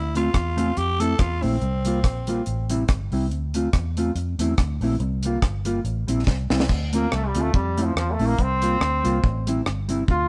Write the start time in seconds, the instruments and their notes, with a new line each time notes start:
Already playing: fingered electric bass D2, tenor saxophone E4
0.15 clean electric guitar A3 C4 F4, tenor saxophone F4, closed hi-hat
0.34 fingered electric bass E2, kick, cross-stick, closed hi-hat
0.57 clean electric guitar A3 C4 F4, closed hi-hat
0.77 fingered electric bass F2, tenor saxophone G4, closed hi-hat
1.00 clean electric guitar A3 C4 E4, tenor saxophone A4, closed hi-hat
1.19 fingered electric bass E2, tenor saxophone F4, kick, cross-stick, closed hi-hat
1.42 fingered electric bass A#1, clean electric guitar A3 C4 E4, tenor saxophone C4, open hi-hat
1.62 fingered electric bass C2, closed hi-hat
1.85 clean electric guitar G3 A#3 F4, closed hi-hat
2.04 fingered electric bass A#1, kick, cross-stick, closed hi-hat
2.27 clean electric guitar G3 A#3 F4, closed hi-hat
2.46 fingered electric bass A1, closed hi-hat
2.70 clean electric guitar G3 C4 E4, closed hi-hat
2.88 fingered electric bass G1, kick, cross-stick, closed hi-hat
3.12 fingered electric bass C2, clean electric guitar G3 C4 E4, open hi-hat
3.31 fingered electric bass D2, closed hi-hat
3.54 clean electric guitar A3 C4 F4, closed hi-hat
3.73 fingered electric bass E2, kick, cross-stick, closed hi-hat
3.97 clean electric guitar A3 C4 F4, closed hi-hat
4.15 fingered electric bass F2, closed hi-hat
4.39 fingered electric bass E2, clean electric guitar A3 C4 E4, closed hi-hat
4.58 fingered electric bass D2, kick, cross-stick, closed hi-hat
4.81 fingered electric bass A#1, clean electric guitar A3 C4 E4, open hi-hat
5.00 fingered electric bass C2, closed hi-hat
5.23 clean electric guitar G3 A#3 F4, closed hi-hat
5.42 fingered electric bass G1, kick, cross-stick, closed hi-hat
5.65 clean electric guitar G3 A#3 F4, closed hi-hat
5.84 fingered electric bass A1, closed hi-hat
6.07 fingered electric bass A#1, clean electric guitar G3 C4 E4, closed hi-hat
6.27 fingered electric bass C2, kick, snare
6.50 fingered electric bass C2, clean electric guitar G3 C4 E4, snare
6.60 snare
6.69 fingered electric bass D2, kick, crash
6.93 clean electric guitar A3 C4 F4, trombone A#3, closed hi-hat
7.12 fingered electric bass C2, trombone A3, cross-stick
7.27 trombone G3
7.35 fingered electric bass D2, clean electric guitar A3 C4 F4, closed hi-hat
7.41 trombone A3
7.54 fingered electric bass F2, trombone G3, kick
7.77 clean electric guitar A3 C4 E4, closed hi-hat
7.83 trombone F3
7.96 fingered electric bass E2, trombone F3, cross-stick
8.10 trombone A3 A#3
8.19 fingered electric bass A#1, clean electric guitar A3 C4 E4, open hi-hat
8.27 trombone A#3
8.38 fingered electric bass C2, trombone C4, kick, hi-hat pedal
8.62 clean electric guitar G3 A#3 F4, closed hi-hat
8.80 fingered electric bass D2, cross-stick
9.03 fingered electric bass C2, clean electric guitar G3 A#3 F4, closed hi-hat
9.24 fingered electric bass A1, kick
9.47 clean electric guitar G3 C4 E4, closed hi-hat
9.66 fingered electric bass G1, cross-stick
9.88 clean electric guitar G3 C4 E4, closed hi-hat
10.08 fingered electric bass D2, trombone F4, kick